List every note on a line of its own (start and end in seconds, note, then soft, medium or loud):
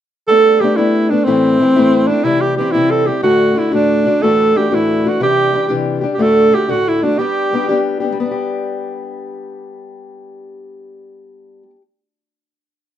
0.28 0.59 G3 medium
0.28 0.61 A3 medium
0.28 0.62 B3 medium
0.28 0.62 D4 medium
0.28 0.62 A4 loud
0.60 0.77 G3 medium
0.60 0.77 A3 medium
0.60 0.76 B3 medium
0.60 0.76 D4 medium
0.60 0.78 G4 medium
0.76 1.11 G3 soft
0.76 1.11 A3 medium
0.76 1.11 B3 medium
0.76 1.09 D4 soft
0.76 1.11 E4 medium
1.09 1.27 B3 soft
1.09 1.26 D4 medium
1.09 1.26 D4 soft
1.14 1.26 A3 soft
1.24 1.60 A2 medium
1.24 1.58 E3 medium
1.24 1.60 A3 medium
1.24 2.09 C4 loud
1.24 1.60 C4 medium
1.24 1.60 E4 medium
1.60 1.75 E3 medium
1.60 1.76 A3 soft
1.60 1.77 C4 medium
1.60 1.75 E4 medium
1.76 2.10 A2 soft
1.76 2.10 E3 medium
1.76 2.10 A3 medium
1.76 2.10 C4 medium
1.76 2.08 E4 medium
2.07 2.24 C4 soft
2.07 2.25 D4 medium
2.07 2.24 E4 soft
2.12 2.24 A3 soft
2.23 2.57 C3 medium
2.23 2.57 E3 medium
2.23 2.58 G3 medium
2.23 2.58 C4 medium
2.23 2.42 E4 medium
2.23 2.58 E4 medium
2.41 2.55 G4 medium
2.56 2.74 E3 medium
2.56 2.73 G3 medium
2.56 2.73 C4 medium
2.56 2.73 G4 medium
2.61 2.73 E4 medium
2.71 3.07 G3 soft
2.71 3.07 C4 medium
2.71 2.92 E4 medium
2.71 3.05 E4 soft
2.76 3.08 C3 soft
2.76 3.08 E3 medium
2.91 3.08 A4 medium
3.06 3.23 G3 soft
3.06 3.23 C4 soft
3.06 3.22 E4 soft
3.06 3.22 G4 medium
3.23 3.56 D2 medium
3.23 3.56 A2 medium
3.23 3.54 D3 medium
3.23 3.55 A3 medium
3.23 3.57 D4 medium
3.23 3.60 F#4 medium
3.23 3.56 F#4 medium
3.55 3.71 D3 medium
3.55 3.71 A3 soft
3.55 3.70 D4 medium
3.55 3.73 E4 medium
3.55 3.71 F#4 medium
3.71 4.06 D2 soft
3.71 4.06 A2 soft
3.71 4.07 D3 soft
3.71 4.05 A3 medium
3.71 4.05 D4 medium
3.71 4.24 D4 medium
3.71 4.03 F#4 medium
4.04 4.22 D3 soft
4.04 4.22 A3 soft
4.04 4.21 D4 soft
4.04 4.21 F#4 soft
4.22 4.55 D2 medium
4.22 4.55 A2 medium
4.22 4.53 E3 medium
4.22 4.54 A3 medium
4.22 4.56 D4 medium
4.22 4.56 F#4 medium
4.22 4.58 A4 loud
4.55 4.70 E3 medium
4.55 4.71 A3 medium
4.55 4.70 D4 medium
4.55 4.69 F#4 medium
4.55 4.76 G4 medium
4.71 5.05 D2 soft
4.71 5.05 A2 soft
4.71 5.05 E3 soft
4.71 5.05 A3 medium
4.71 5.06 D4 medium
4.71 5.10 E4 medium
4.71 5.04 F#4 soft
5.05 5.19 E3 soft
5.05 5.21 A3 soft
5.05 5.21 D4 soft
5.05 5.20 F#4 soft
5.05 5.22 F#4 medium
5.20 5.53 C3 medium
5.20 5.51 E3 medium
5.20 5.52 G3 medium
5.20 5.55 D4 medium
5.20 5.54 G4 medium
5.20 5.73 G4 loud
5.52 5.69 E3 medium
5.52 5.69 G3 medium
5.52 5.68 D4 medium
5.52 5.67 G4 medium
5.68 6.03 C3 soft
5.68 6.03 E3 medium
5.68 6.03 G3 medium
5.68 6.03 D4 medium
5.68 6.00 G4 medium
6.01 6.19 G3 soft
6.01 6.18 D4 soft
6.01 6.18 G4 medium
6.14 6.23 G4 medium
6.18 6.52 D2 medium
6.18 6.52 A2 soft
6.18 6.51 D3 medium
6.18 6.51 A3 medium
6.18 6.53 D4 medium
6.18 6.53 F#4 medium
6.18 6.56 A4 loud
6.51 6.68 D3 medium
6.51 6.68 A3 medium
6.51 6.68 D4 medium
6.51 6.67 F#4 medium
6.51 6.71 G4 medium
6.68 7.03 D2 soft
6.68 7.03 A2 soft
6.68 7.04 D3 medium
6.68 7.02 A3 medium
6.68 7.03 D4 medium
6.68 7.01 F#4 medium
6.68 6.90 F#4 medium
6.88 7.04 E4 medium
7.02 7.18 D3 soft
7.02 7.19 A3 soft
7.02 7.20 D4 medium
7.02 7.18 D4 soft
7.02 7.18 F#4 soft
7.19 7.52 G3 medium
7.19 7.53 B3 medium
7.19 7.54 D4 medium
7.19 7.85 G4 loud
7.19 7.55 G4 medium
7.53 7.68 G3 medium
7.53 7.68 B3 medium
7.53 7.68 D4 medium
7.53 7.68 G4 medium
7.69 8.12 G3 soft
7.69 8.03 B3 soft
7.69 8.01 D4 soft
7.69 8.00 G4 medium
8.00 8.18 B3 soft
8.00 8.17 D4 soft
8.00 8.16 G4 medium
8.12 11.62 G3 medium
8.20 11.70 B3 medium
8.26 11.76 D4 medium
8.31 11.81 G4 medium